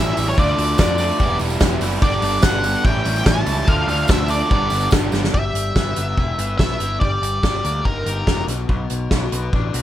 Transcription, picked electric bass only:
0.00 0.12 A1 medium
0.17 0.33 A1 medium
0.38 0.53 D2 medium
0.58 0.74 D2 medium
0.79 1.10 F2 medium
1.20 1.36 E1 loud
1.40 1.56 E1 medium
1.61 1.77 E1 loud
1.80 1.97 F#1 medium
2.02 2.18 G1 medium
2.22 2.38 G1 medium
2.43 2.75 G1 loud
2.84 3.00 A1 medium
3.05 3.21 A1 medium
3.26 3.42 A1 loud
3.46 3.63 C#2 medium
3.68 3.84 D2 medium
3.87 4.04 D2 medium
4.09 4.41 D2 loud
4.51 4.67 G1 medium
4.71 4.87 G1 medium
4.92 5.08 G1 loud
5.12 5.29 G1 medium
5.34 5.51 G1 medium
5.54 5.71 G1 medium
5.75 5.92 G1 medium
5.97 6.13 G1 medium
6.17 6.34 E1 medium
6.38 6.55 G1 medium
6.59 6.76 B1 medium
6.80 6.97 G1 medium
7.01 7.18 G1 medium
7.22 7.39 G1 medium
7.43 7.60 G1 medium
7.65 7.81 D2 medium
7.85 8.02 G1 medium
8.06 8.23 G1 medium
8.27 8.44 F1 medium
8.48 8.64 B1 medium
8.69 8.86 B1 medium
8.90 9.07 B1 medium
9.11 9.28 B1 medium
9.32 9.49 B1 medium
9.53 9.70 A1 medium
9.74 9.82 B1 medium

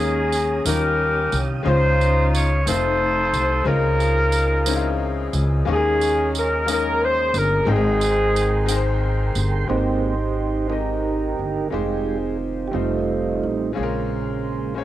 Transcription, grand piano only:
0.00 0.62 D#3 medium
0.00 0.49 G#3 medium
0.00 0.49 A#3 medium
0.00 0.50 C#4 medium
0.00 0.50 D#4 medium
0.00 0.54 A#4 medium
0.65 1.62 D#3 medium
0.65 0.72 F#3 soft
0.65 1.49 C#4 medium
0.65 1.50 D#4 medium
0.65 1.50 F4 medium
0.65 1.51 A#4 medium
0.71 1.52 G3 medium
1.63 2.62 C#3 medium
1.63 2.48 G#3 medium
1.63 2.49 C#4 medium
1.63 2.49 D#4 medium
1.63 2.50 F4 medium
1.67 2.50 C5 medium
2.66 3.50 A3 medium
2.66 3.50 C4 medium
2.66 3.51 D#4 medium
2.66 3.51 F4 medium
2.66 2.74 A#4 medium
2.75 3.55 C5 medium
3.64 4.63 C#3 medium
3.64 4.49 G#3 medium
3.64 4.50 C4 medium
3.64 4.50 C#4 medium
3.64 4.51 D#4 medium
3.64 4.51 A#4 medium
4.66 5.50 G#3 medium
4.66 5.50 C4 medium
4.66 5.51 C#4 medium
4.66 5.51 D#4 medium
4.66 4.74 E4 medium
4.76 5.55 F4 medium
5.65 6.64 D#3 medium
5.65 6.50 G#3 medium
5.65 6.51 A#3 medium
5.65 6.52 C#4 medium
5.65 6.52 D#4 medium
5.65 5.75 G#4 medium
5.76 6.56 A#4 medium
6.65 7.51 G#3 medium
6.65 7.51 A#3 medium
6.65 7.52 C#4 medium
6.65 7.52 D#4 medium
6.65 7.53 D#5 medium
7.65 8.65 G#2 medium
7.65 8.51 G#3 medium
7.65 8.52 C4 medium
7.65 8.52 D#4 medium
7.65 7.75 G#4 medium
7.65 8.53 G5 medium
7.76 8.57 A#4 medium
8.66 9.52 G#3 medium
8.66 9.53 C4 medium
8.66 9.53 D#4 medium
8.66 8.76 A#4 medium
8.66 9.54 G5 medium
8.76 9.57 C5 medium
9.67 10.67 G#2 soft
9.67 10.53 G#3 medium
9.67 10.54 C4 medium
9.67 10.54 D#4 medium
9.67 10.55 G4 medium
9.67 9.77 B4 medium
9.77 10.59 C5 medium
10.68 11.55 G#3 soft
10.68 11.55 C4 soft
10.68 11.56 D#4 soft
10.68 11.56 G4 soft
10.68 11.57 D#5 medium
11.70 12.56 G#3 medium
11.70 12.57 D#4 medium
11.70 12.57 F4 medium
11.70 12.58 G4 medium
11.70 12.58 C5 medium
12.71 13.58 A3 medium
12.71 13.58 C4 soft
12.71 13.59 D#4 soft
12.71 13.59 F4 soft
12.75 13.60 C5 medium
13.73 14.73 A#2 medium
13.73 14.60 G#3 medium
13.73 14.60 C4 medium
13.73 14.61 C#4 medium
13.73 14.61 F4 medium
13.73 13.83 G#4 medium
13.83 14.65 A#4 medium
14.74 14.84 G#3 medium
14.74 14.84 C#4 medium
14.74 14.84 F4 medium
14.74 14.84 C5 medium
14.74 14.84 C#5 medium

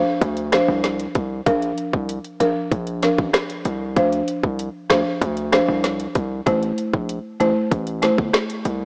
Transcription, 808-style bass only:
0.21 0.60 D2 loud
0.68 1.07 C2 loud
1.15 1.41 C2 medium
1.46 1.72 A#1 loud
1.93 2.19 C2 medium
2.40 2.53 A#1 medium
2.71 3.10 A#1 loud
3.18 3.31 A1 medium
3.65 3.98 C2 loud
3.96 4.22 D2 loud
4.43 4.69 C2 medium
4.90 5.03 D2 loud
5.22 5.60 D2 loud
5.68 6.07 C2 medium
6.15 6.41 C2 loud
6.47 6.72 A1 loud
6.93 7.19 A#1 medium
7.40 7.53 A1 loud
7.72 8.10 A1 loud
8.18 8.31 G1 medium
8.65 8.85 C2 medium

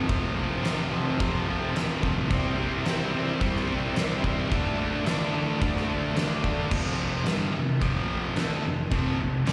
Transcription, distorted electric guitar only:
0.08 0.34 F2 loud
0.08 0.36 C3 loud
0.08 0.37 F3 loud
0.36 0.62 F2 medium
0.36 0.63 C3 medium
0.36 0.64 F3 medium
0.63 0.90 F2 medium
0.63 0.91 C3 loud
0.63 0.92 F3 loud
0.91 1.18 F2 medium
0.91 1.19 C3 medium
0.91 1.19 F3 medium
1.19 1.46 F2 loud
1.19 1.47 C3 loud
1.19 1.48 F3 loud
1.47 1.74 F2 medium
1.47 1.75 C3 loud
1.47 1.76 F3 loud
1.75 2.01 F2 medium
1.75 2.02 C3 medium
1.75 2.03 F3 loud
2.03 2.29 F2 medium
2.03 2.28 C3 medium
2.03 2.29 F3 loud
2.30 2.56 C3 loud
2.30 2.57 G3 loud
2.30 2.58 C4 loud
2.57 2.84 C3 medium
2.57 2.85 G3 medium
2.57 2.86 C4 loud
2.85 3.12 C3 medium
2.85 3.13 G3 medium
2.85 3.14 C4 loud
3.13 3.39 C3 medium
3.13 3.40 G3 loud
3.13 3.41 C4 loud
3.40 3.66 C3 loud
3.40 3.67 G3 loud
3.40 3.69 C4 loud
3.67 3.93 C3 medium
3.67 3.95 G3 loud
3.67 3.95 C4 loud
3.94 4.21 C3 medium
3.94 4.23 G3 loud
3.94 4.24 C4 loud
4.23 4.49 C3 medium
4.23 4.50 G3 medium
4.23 4.50 C4 loud
4.50 4.77 D3 loud
4.50 4.78 A3 loud
4.50 4.79 D4 loud
4.78 5.04 D3 medium
4.78 5.05 A3 medium
4.78 5.06 D4 medium
5.05 5.31 D3 medium
5.05 5.33 A3 medium
5.05 5.33 D4 loud
5.32 5.60 D3 medium
5.32 5.61 A3 medium
5.32 5.61 D4 loud
5.61 5.87 D3 medium
5.61 5.88 A3 medium
5.61 5.89 D4 loud
5.88 6.14 D3 medium
5.88 6.15 A3 loud
5.88 6.16 D4 medium
6.15 6.42 D3 medium
6.15 6.43 A3 medium
6.15 6.44 D4 medium
6.43 6.69 D3 medium
6.43 6.70 A3 medium
6.43 6.70 D4 medium
6.70 7.24 F2 loud
6.70 7.25 C3 loud
6.70 7.26 F3 loud
7.25 7.52 G2 medium
7.25 7.53 D3 loud
7.25 7.53 G3 medium
7.53 7.76 F2 medium
7.53 7.76 C3 medium
7.80 8.35 F2 medium
7.80 8.36 C3 medium
7.80 8.36 F3 loud
8.36 8.63 D3 loud
8.36 8.63 A3 loud
8.36 8.64 D4 loud
8.64 8.86 F2 medium
8.64 8.86 C3 medium
8.91 9.18 F2 loud
8.91 9.18 C3 loud
8.91 9.19 F3 loud
9.19 9.41 F2 medium
9.19 9.41 C3 medium
9.46 9.53 G2 medium
9.46 9.53 D3 medium
9.46 9.53 G3 loud

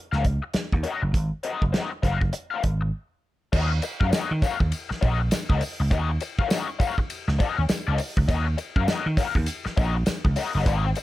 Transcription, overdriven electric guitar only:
0.12 0.23 C#4 medium
0.12 0.24 F#4 medium
0.12 0.24 A#4 medium
0.12 0.23 F5 medium
0.24 muted overdriven electric guitar stroke soft
0.42 muted overdriven electric guitar stroke soft
0.54 muted overdriven electric guitar stroke soft
0.73 muted overdriven electric guitar stroke soft
0.83 1.01 C#4 medium
0.83 1.01 F#4 medium
0.83 1.01 A#4 medium
0.83 1.01 D#5 medium
1.02 muted overdriven electric guitar stroke soft
1.43 1.61 C4 medium
1.43 1.61 F#4 medium
1.43 1.61 A#4 medium
1.43 1.62 D#5 medium
1.73 1.90 C4 medium
1.73 1.91 F#4 medium
1.73 1.90 A#4 medium
1.73 1.89 D#5 medium
1.91 muted overdriven electric guitar stroke soft
2.03 2.17 C4 medium
2.03 2.17 F#4 medium
2.03 2.17 A#4 medium
2.03 2.18 F5 medium
2.20 muted overdriven electric guitar stroke soft
2.33 muted overdriven electric guitar stroke soft
2.51 2.62 C4 soft
2.51 2.62 F#4 medium
2.51 2.62 A#4 medium
2.51 2.62 F5 medium
2.63 muted overdriven electric guitar stroke soft
2.81 muted overdriven electric guitar stroke soft
3.52 3.70 C#4 loud
3.52 3.70 F#4 loud
3.52 3.70 A#4 loud
3.52 3.70 D#5 loud
3.71 muted overdriven electric guitar stroke soft
3.83 muted overdriven electric guitar stroke soft
4.00 4.10 C#4 soft
4.00 4.10 F#4 medium
4.00 4.10 A#4 medium
4.00 4.09 F5 medium
4.12 4.29 C#4 medium
4.12 4.30 F#4 medium
4.12 4.30 A#4 medium
4.12 4.30 D#5 loud
4.31 muted overdriven electric guitar stroke soft
4.42 4.56 C#4 medium
4.42 4.56 F#4 medium
4.42 4.56 A#4 medium
4.42 4.56 F5 medium
4.60 muted overdriven electric guitar stroke soft
4.89 muted overdriven electric guitar stroke medium
5.01 5.19 C#4 medium
5.01 5.19 F#4 medium
5.01 5.19 A#4 medium
5.01 5.19 D#5 medium
5.20 muted overdriven electric guitar stroke medium
5.32 muted overdriven electric guitar stroke soft
5.49 5.61 C#4 medium
5.49 5.61 F#4 medium
5.49 5.61 A#4 medium
5.49 5.61 D#5 medium
5.62 muted overdriven electric guitar stroke medium
5.80 muted overdriven electric guitar stroke soft
5.91 6.08 C#4 medium
5.91 6.08 F#4 loud
5.91 6.09 A#4 medium
5.91 6.09 D#5 loud
6.10 muted overdriven electric guitar stroke soft
6.21 muted overdriven electric guitar stroke soft
6.39 6.48 C#4 medium
6.39 6.48 F#4 medium
6.39 6.48 A#4 medium
6.39 6.48 F5 medium
6.51 6.67 C#4 medium
6.51 6.68 F#4 medium
6.51 6.67 A#4 medium
6.51 6.67 D#5 medium
6.68 muted overdriven electric guitar stroke soft
6.79 6.93 C#4 medium
6.79 6.93 F#4 medium
6.79 6.94 A#4 medium
6.79 6.94 F5 medium
6.98 muted overdriven electric guitar stroke soft
7.28 muted overdriven electric guitar stroke soft
7.39 7.61 C#4 medium
7.39 7.58 F#4 medium
7.39 7.57 A#4 loud
7.39 7.56 D#5 loud
7.57 muted overdriven electric guitar stroke soft
7.69 muted overdriven electric guitar stroke soft
7.87 7.98 C#4 medium
7.87 7.99 F#4 medium
7.87 7.99 A#4 medium
7.87 7.99 D#5 loud
7.99 muted overdriven electric guitar stroke soft
8.17 muted overdriven electric guitar stroke soft
8.28 8.45 C#4 loud
8.28 8.46 F#4 medium
8.28 8.46 A#4 loud
8.28 8.45 D#5 loud
8.46 muted overdriven electric guitar stroke soft
8.58 muted overdriven electric guitar stroke soft
8.76 8.86 C#4 soft
8.76 8.86 F#4 medium
8.76 8.85 A#4 medium
8.76 8.85 F5 medium
8.88 9.05 C#4 medium
8.88 9.05 F#4 medium
8.88 9.05 A#4 medium
8.88 9.05 D#5 loud
9.06 muted overdriven electric guitar stroke medium
9.17 9.31 C#4 medium
9.17 9.31 F#4 medium
9.17 9.31 A#4 medium
9.17 9.32 F5 medium
9.35 muted overdriven electric guitar stroke soft
9.65 muted overdriven electric guitar stroke soft
9.77 9.94 C#4 medium
9.77 9.94 F#4 medium
9.77 9.95 A#4 loud
9.77 9.94 D#5 loud
9.95 muted overdriven electric guitar stroke medium
10.07 muted overdriven electric guitar stroke soft
10.25 muted overdriven electric guitar stroke medium
10.36 10.50 C#4 medium
10.36 10.50 F#4 medium
10.36 10.50 A#4 medium
10.36 10.51 D#5 medium
10.55 10.64 C#4 medium
10.55 10.64 F#4 medium
10.55 10.64 A#4 medium
10.55 10.63 D#5 medium
10.66 10.88 C4 loud
10.66 10.85 F#4 loud
10.66 10.85 A#4 loud
10.66 10.84 D#5 loud
10.85 muted overdriven electric guitar stroke soft
10.97 muted overdriven electric guitar stroke soft

